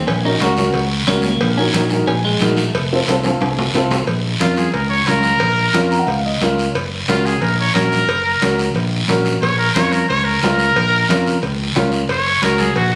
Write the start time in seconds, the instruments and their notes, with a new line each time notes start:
0.06 fingered electric bass A#1, clean electric guitar C#4, cowbell, long guiro
0.25 upright piano C#4 F#4 A#4, clean electric guitar D#4, high conga
0.40 fingered electric bass C#2, upright piano C#4 F#4 A#4, clean electric guitar F#4, cowbell, high conga, short guiro
0.57 upright piano C#4 F#4 A#4, high conga, low conga, short guiro
0.73 fingered electric bass C#2, cowbell, high conga, long guiro
1.06 fingered electric bass C#2, clean electric guitar C#4, upright piano C#4 F#4 A#4, cowbell, high conga, low conga, short guiro
1.22 clean electric guitar A#3, high conga, short guiro
1.39 fingered electric bass A#1, cowbell, long guiro
1.57 clean electric guitar C#4, upright piano D#4 F#4 A#4
1.73 fingered electric bass A#1, upright piano D#4 F#4 A#4, cowbell, high conga, short guiro
1.89 upright piano D#4 F#4 A#4, high conga, short guiro
2.06 fingered electric bass A#1, clean electric guitar C#4, cowbell, high conga, long guiro
2.25 clean electric guitar G#3
2.40 fingered electric bass A#1, upright piano D#4 F#4 A#4, cowbell, high conga, short guiro
2.57 clean electric guitar A3, short guiro
2.73 fingered electric bass F1, cowbell, long guiro
2.92 upright piano C4 F4 A4
3.06 fingered electric bass C2, upright piano C4 F4, cowbell, high conga, short guiro
3.10 upright piano A4
3.23 upright piano C4 F4 A4, high conga, high timbale, short guiro
3.41 fingered electric bass C2, cowbell, high conga, high timbale, long guiro
3.58 low conga, low timbale
3.74 fingered electric bass C2, upright piano C4 F4 A4, cowbell, low conga, short guiro
3.90 low conga, low timbale, short guiro
4.07 fingered electric bass A#1, cowbell, long guiro
4.24 high conga
4.39 fingered electric bass F2, upright piano C#4 F4 A#4, trumpet F4, cowbell, high conga, short guiro
4.57 trumpet G#4, high conga, short guiro
4.72 fingered electric bass C#2, trumpet A#4, cowbell, high conga, long guiro
4.89 trumpet C#5
5.06 fingered electric bass C#2, upright piano C#4 F4 A#4, trumpet A#4, cowbell, high conga, short guiro
5.23 high conga, short guiro
5.39 fingered electric bass A#1, cowbell, long guiro
5.58 high conga
5.73 fingered electric bass F2, upright piano C#4 F4 A#4, cowbell, high conga, short guiro
5.91 upright piano A#5, short guiro
5.99 upright piano F#5
6.07 fingered electric bass C#2, upright piano F5, cowbell, high conga, long guiro
6.26 upright piano D#5
6.41 fingered electric bass C#2, upright piano C#4 F4 A#4 C#5, cowbell, high conga, low conga, short guiro
6.58 short guiro
6.75 fingered electric bass F#1, cowbell, long guiro
6.93 high conga
7.08 fingered electric bass C#2, upright piano C#4 F#4 A#4, trumpet F4, cowbell, high conga, short guiro
7.25 trumpet G#4, short guiro
7.41 fingered electric bass A#1, trumpet A#4, cowbell, high conga, long guiro
7.60 trumpet C#5
7.74 fingered electric bass A#1, upright piano C#4 F#4 A#4, trumpet A#4, cowbell, high conga, short guiro
7.92 high conga, short guiro
8.08 fingered electric bass F#1, cowbell, long guiro
8.26 high conga
8.41 fingered electric bass C#2, upright piano C#4 F#4 A#4, cowbell, high conga, short guiro
8.58 short guiro
8.74 fingered electric bass A#1, cowbell, high conga, long guiro
9.08 fingered electric bass A#1, upright piano C#4 F#4 A#4, cowbell, high conga, low conga, short guiro
9.25 high conga, short guiro
9.41 fingered electric bass A#1, trumpet C#5, cowbell, long guiro
9.58 trumpet A#4, high conga
9.74 fingered electric bass F2, upright piano C#4 F4 A#4, trumpet C#5, cowbell, high conga, short guiro
9.92 trumpet A#4, high conga, short guiro
10.08 fingered electric bass C#2, trumpet C#5, cowbell, high conga, long guiro
10.24 trumpet A#4
10.42 fingered electric bass C#2, upright piano C#4 F4 A#4, trumpet A#4, cowbell, high conga, low timbale, short guiro
10.59 short guiro
10.76 fingered electric bass A#1, cowbell, long guiro
10.94 high conga
11.09 fingered electric bass F2, upright piano C#4 F4 A#4, cowbell, high conga, short guiro
11.26 low conga, short guiro
11.42 fingered electric bass C#2, cowbell, high conga, long guiro
11.75 fingered electric bass C#2, upright piano C#4 F4 A#4, cowbell, high conga, low conga, low timbale, short guiro
11.92 short guiro
12.08 fingered electric bass F#1, trumpet C#5, cowbell, long guiro
12.27 high conga
12.42 fingered electric bass C#2, upright piano C#4 F#4 A#4, trumpet A#4, cowbell, high conga, short guiro
12.58 trumpet G#4, high conga, short guiro
12.75 fingered electric bass A#1, trumpet F#4, cowbell, high conga, long guiro